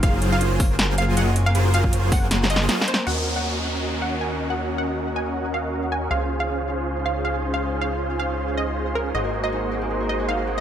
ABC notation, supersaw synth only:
X:1
M:4/4
L:1/8
Q:"Swing 16ths" 1/4=158
K:Ebdor
V:1 name="Supersaw synth"
[G,B,FAc]3 [G,B,FAc]3 [G,B,FAe] z | [G,B,FAc]3 [G,B,FAc]3 [G,B,FAe] z | [DGBeg]8- | [DGBeg]8 |
[DFAcf]8- | [DFAcf]8 | [B,GAce]8 |]